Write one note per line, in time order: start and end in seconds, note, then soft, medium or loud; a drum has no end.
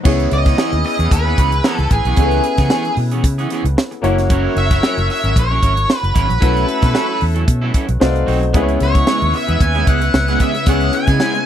0.03 0.27 C#2 loud
0.03 0.29 E3 medium
0.03 2.13 B3 medium
0.03 0.29 B3 medium
0.03 2.13 C#4 medium
0.03 0.30 C#4 medium
0.03 3.73 E4 medium
0.03 2.13 E4 medium
0.03 3.73 G#4 medium
0.03 0.30 G#4 medium
0.03 2.14 G#4 medium
0.03 3.73 B4 loud
0.03 2.14 C#5 medium
0.03 kick loud
0.03 crash medium
0.20 closed hi-hat soft
0.31 0.53 C#2 loud
0.31 0.85 D#5 loud
0.31 muted clean electric guitar stroke soft
0.31 closed hi-hat medium
0.45 0.57 E3 soft
0.45 0.58 B3 medium
0.45 0.58 C#4 medium
0.45 0.57 G#4 medium
0.45 kick medium
0.45 snare soft
0.45 closed hi-hat medium
0.58 0.75 E3 medium
0.58 0.73 B3 loud
0.58 0.72 C#4 medium
0.58 0.71 G#4 loud
0.58 snare loud
0.73 0.82 D#2 medium
0.73 muted clean electric guitar stroke medium
0.73 closed hi-hat soft
0.84 1.10 D#5 loud
0.84 muted clean electric guitar stroke soft
0.84 open hi-hat medium
0.99 1.09 E2 medium
0.99 1.09 E3 soft
0.99 1.10 B3 medium
0.99 1.10 C#4 medium
0.99 1.11 G#4 medium
0.99 closed hi-hat medium
1.11 1.33 D#2 loud
1.11 1.72 B4 medium
1.11 muted clean electric guitar stroke soft
1.11 kick loud
1.11 closed hi-hat medium
1.25 1.37 E3 medium
1.25 1.37 B3 medium
1.25 1.38 C#4 medium
1.25 1.39 G#4 medium
1.38 1.59 C#2 medium
1.38 1.52 E3 medium
1.38 1.52 B3 medium
1.38 1.52 C#4 medium
1.38 1.51 G#4 medium
1.38 kick medium
1.38 closed hi-hat medium
1.52 muted clean electric guitar stroke medium
1.52 closed hi-hat medium
1.64 1.82 E3 medium
1.64 1.79 B3 medium
1.64 1.78 C#4 loud
1.64 1.78 G#4 loud
1.64 snare loud
1.72 1.92 A4 medium
1.79 1.88 C#2 medium
1.79 muted clean electric guitar stroke soft
1.79 closed hi-hat soft
1.91 2.03 A1 medium
1.91 2.94 G#4 medium
1.91 muted clean electric guitar stroke soft
1.91 kick loud
1.91 closed hi-hat medium
2.05 2.15 B1 medium
2.05 2.16 E3 soft
2.05 2.17 B3 soft
2.05 2.17 C#4 medium
2.05 2.17 G#4 medium
2.05 closed hi-hat soft
2.16 2.39 C#2 loud
2.16 2.42 E3 medium
2.16 3.99 B3 medium
2.16 2.42 B3 medium
2.16 3.99 C#4 medium
2.16 2.43 C#4 medium
2.16 4.00 E4 medium
2.16 4.00 G#4 medium
2.16 2.43 G#4 loud
2.16 2.25 A4 medium
2.16 kick loud
2.16 closed hi-hat medium
2.25 4.03 B4 medium
2.31 closed hi-hat soft
2.44 muted clean electric guitar stroke soft
2.44 closed hi-hat medium
2.58 2.68 C#3 loud
2.58 2.69 E3 medium
2.58 2.70 B3 medium
2.58 2.70 C#4 medium
2.58 2.70 G#4 medium
2.58 kick medium
2.58 snare soft
2.58 closed hi-hat medium
2.70 2.88 E3 medium
2.70 2.85 B3 medium
2.70 2.85 C#4 medium
2.70 2.84 G#4 medium
2.70 snare loud
2.85 muted clean electric guitar stroke soft
2.85 closed hi-hat soft
2.97 3.24 B2 loud
2.97 muted clean electric guitar stroke soft
2.97 open hi-hat medium
3.11 3.23 E3 medium
3.11 3.24 B3 soft
3.11 3.24 C#4 medium
3.11 3.23 G#4 medium
3.11 closed hi-hat medium
3.24 3.45 C#3 loud
3.24 muted clean electric guitar stroke soft
3.24 kick loud
3.24 closed hi-hat medium
3.38 3.50 E3 medium
3.38 3.50 B3 medium
3.38 3.51 C#4 medium
3.38 3.52 G#4 medium
3.38 closed hi-hat soft
3.50 3.64 E3 medium
3.50 3.65 B3 medium
3.50 3.65 C#4 medium
3.50 3.65 G#4 medium
3.50 closed hi-hat medium
3.64 3.74 C#2 medium
3.64 muted clean electric guitar stroke soft
3.64 closed hi-hat medium
3.77 muted clean electric guitar stroke soft
3.77 snare loud
3.91 muted clean electric guitar stroke soft
3.91 closed hi-hat soft
4.02 4.46 F#1 loud
4.02 4.20 F#3 medium
4.02 6.11 A#3 medium
4.02 6.11 C#4 medium
4.02 4.18 C#4 medium
4.02 6.12 E4 medium
4.02 4.18 E4 medium
4.02 6.12 F#4 medium
4.02 6.12 A#4 loud
4.02 4.17 A#4 medium
4.02 6.12 C#5 loud
4.02 6.12 C#5 medium
4.02 closed hi-hat medium
4.18 muted clean electric guitar stroke medium
4.18 snare soft
4.18 closed hi-hat medium
4.30 4.54 F#3 loud
4.30 4.55 C#4 loud
4.30 4.55 E4 loud
4.30 4.55 A#4 loud
4.30 kick loud
4.30 closed hi-hat medium
4.56 4.78 F#1 loud
4.56 5.07 E5 loud
4.56 muted clean electric guitar stroke soft
4.56 closed hi-hat medium
4.71 4.81 F#3 medium
4.71 4.82 C#4 medium
4.71 4.82 E4 medium
4.71 4.82 A#4 medium
4.71 kick loud
4.71 snare soft
4.71 closed hi-hat medium
4.82 5.00 F#3 medium
4.82 4.97 C#4 medium
4.82 4.96 E4 medium
4.82 4.96 A#4 medium
4.82 snare loud
4.97 5.07 F#1 medium
4.97 muted clean electric guitar stroke soft
4.97 closed hi-hat soft
5.09 5.38 E5 loud
5.09 muted clean electric guitar stroke soft
5.09 open hi-hat medium
5.23 5.34 G#1 medium
5.23 5.34 F#3 soft
5.23 5.35 C#4 soft
5.23 5.36 E4 medium
5.23 5.35 A#4 medium
5.23 closed hi-hat medium
5.36 5.58 A#1 loud
5.36 5.98 C#5 loud
5.36 muted clean electric guitar stroke soft
5.36 kick medium
5.36 closed hi-hat medium
5.50 5.61 F#3 medium
5.50 5.61 C#4 medium
5.50 5.62 E4 medium
5.50 5.62 A#4 medium
5.62 5.84 G#1 medium
5.62 5.76 F#3 medium
5.62 5.76 C#4 medium
5.62 5.76 E4 medium
5.62 5.75 A#4 medium
5.62 kick medium
5.62 closed hi-hat medium
5.76 muted clean electric guitar stroke soft
5.76 closed hi-hat medium
5.88 muted clean electric guitar stroke soft
5.88 snare loud
5.98 6.19 B4 loud
6.03 6.13 F#1 medium
6.03 muted clean electric guitar stroke soft
6.03 closed hi-hat soft
6.14 6.27 G#1 medium
6.14 6.32 F#3 medium
6.14 6.28 C#4 medium
6.14 6.28 E4 medium
6.14 6.27 A#4 loud
6.14 kick medium
6.14 closed hi-hat medium
6.19 7.20 B4 medium
6.28 6.40 A#1 medium
6.28 muted clean electric guitar stroke soft
6.28 closed hi-hat soft
6.40 6.64 B1 loud
6.40 6.66 F#3 loud
6.40 7.97 A3 medium
6.40 7.98 C#4 medium
6.40 6.66 C#4 medium
6.40 7.98 E4 medium
6.40 6.66 E4 loud
6.40 7.98 F#4 medium
6.40 7.72 A4 loud
6.40 6.67 A4 loud
6.40 7.99 B4 medium
6.40 7.72 C#5 medium
6.40 7.72 E5 loud
6.40 kick loud
6.40 closed hi-hat medium
6.57 closed hi-hat soft
6.67 muted clean electric guitar stroke soft
6.67 closed hi-hat medium
6.81 6.93 B2 medium
6.81 6.92 F#3 soft
6.81 6.92 C#4 soft
6.81 6.93 E4 medium
6.81 6.93 A4 medium
6.81 kick medium
6.81 snare soft
6.81 closed hi-hat soft
6.93 7.11 F#3 medium
6.93 7.08 C#4 medium
6.93 7.08 E4 medium
6.93 7.07 A4 medium
6.93 snare loud
7.08 muted clean electric guitar stroke soft
7.21 7.44 E2 medium
7.21 muted clean electric guitar stroke soft
7.21 open hi-hat medium
7.35 7.46 F#3 soft
7.35 7.46 C#4 medium
7.35 7.46 E4 medium
7.35 7.47 A4 medium
7.35 closed hi-hat medium
7.47 7.70 B2 loud
7.47 muted clean electric guitar stroke soft
7.47 kick loud
7.47 closed hi-hat medium
7.61 7.72 F#3 medium
7.61 7.73 C#4 medium
7.61 7.74 E4 medium
7.61 7.74 A4 medium
7.74 7.88 F#3 medium
7.74 7.88 C#4 medium
7.74 7.87 E4 medium
7.74 7.87 A4 medium
7.74 kick medium
7.74 closed hi-hat medium
7.88 7.99 B1 medium
7.88 muted clean electric guitar stroke soft
7.88 closed hi-hat medium
8.00 8.23 C2 medium
8.00 8.54 A3 medium
8.00 8.54 C4 medium
8.00 8.54 D#4 medium
8.00 8.54 F#4 medium
8.00 8.27 B4 medium
8.00 8.54 C5 medium
8.00 8.28 D5 medium
8.00 8.27 F5 medium
8.00 muted clean electric guitar stroke soft
8.00 snare loud
8.14 muted clean electric guitar stroke soft
8.14 closed hi-hat soft
8.26 8.54 B1 medium
8.26 8.44 F#3 loud
8.26 8.42 C4 loud
8.26 8.41 D#4 medium
8.26 8.40 A4 medium
8.26 open hi-hat medium
8.41 muted clean electric guitar stroke soft
8.41 closed hi-hat soft
8.53 8.76 C#2 loud
8.53 11.46 C#3 medium
8.53 8.79 G#3 medium
8.53 10.63 B3 medium
8.53 8.79 B3 medium
8.53 10.66 B3 medium
8.53 10.63 C#4 medium
8.53 8.79 E4 medium
8.53 10.63 E4 medium
8.53 11.46 E4 medium
8.53 8.79 G#4 medium
8.53 10.64 G#4 medium
8.53 11.46 B4 loud
8.53 8.62 B4 medium
8.53 11.46 C#5 medium
8.53 11.46 E5 loud
8.53 kick loud
8.53 closed hi-hat medium
8.62 10.67 C#5 medium
8.69 closed hi-hat soft
8.80 9.03 C#2 loud
8.80 9.32 C#5 medium
8.80 muted clean electric guitar stroke soft
8.80 closed hi-hat medium
8.94 9.05 G#3 soft
8.94 9.06 B3 soft
8.94 9.07 E4 medium
8.94 9.07 G#4 medium
8.94 kick medium
8.94 closed hi-hat medium
9.07 9.24 G#3 medium
9.07 9.20 B3 medium
9.07 9.20 E4 medium
9.07 9.19 G#4 medium
9.07 snare loud
9.21 9.32 D#2 medium
9.21 muted clean electric guitar stroke soft
9.21 closed hi-hat soft
9.33 9.60 E5 loud
9.33 muted clean electric guitar stroke soft
9.33 open hi-hat medium
9.47 9.59 E2 medium
9.47 9.59 G#3 soft
9.47 9.60 B3 medium
9.47 9.60 E4 soft
9.47 9.60 G#4 medium
9.47 closed hi-hat medium
9.60 9.82 D#2 medium
9.60 9.88 G#5 loud
9.60 muted clean electric guitar stroke soft
9.60 kick medium
9.60 closed hi-hat medium
9.74 9.86 G#3 medium
9.74 9.86 B3 medium
9.74 9.87 E4 medium
9.74 9.88 G#4 medium
9.74 closed hi-hat soft
9.87 10.09 C#2 medium
9.87 10.01 G#3 medium
9.87 10.01 B3 medium
9.87 10.02 E4 medium
9.87 10.01 G#4 medium
9.87 10.38 F#5 loud
9.87 kick loud
9.87 closed hi-hat medium
10.02 muted clean electric guitar stroke soft
10.02 closed hi-hat medium
10.14 10.35 C#2 medium
10.14 muted clean electric guitar stroke soft
10.14 snare loud
10.28 10.39 G#3 medium
10.28 10.40 B3 medium
10.28 10.41 E4 medium
10.28 10.41 G#4 medium
10.28 closed hi-hat soft
10.40 10.55 G#3 medium
10.40 10.55 B3 medium
10.40 10.55 E4 medium
10.40 10.54 G#4 medium
10.40 10.69 E5 medium
10.40 kick medium
10.40 closed hi-hat medium
10.55 muted clean electric guitar stroke medium
10.55 snare soft
10.55 closed hi-hat soft
10.66 10.89 C#2 loud
10.66 10.92 G#3 loud
10.66 11.46 B3 medium
10.66 10.92 B3 loud
10.66 11.46 C#4 medium
10.66 11.46 E4 medium
10.66 10.92 E4 loud
10.66 10.93 G#4 loud
10.66 11.46 G#4 medium
10.66 11.46 C#5 medium
10.66 10.95 F#5 loud
10.66 kick loud
10.66 closed hi-hat medium
10.81 closed hi-hat soft
10.93 11.46 G#5 loud
10.93 muted clean electric guitar stroke soft
10.93 closed hi-hat medium
11.07 11.18 C#3 medium
11.07 11.19 G#3 medium
11.07 11.20 B3 medium
11.07 11.21 E4 medium
11.07 11.20 G#4 medium
11.07 kick medium
11.07 snare soft
11.07 closed hi-hat medium
11.20 11.37 G#3 medium
11.20 11.35 B3 medium
11.20 11.34 E4 loud
11.20 11.34 G#4 medium
11.20 snare loud
11.35 muted clean electric guitar stroke medium
11.35 closed hi-hat soft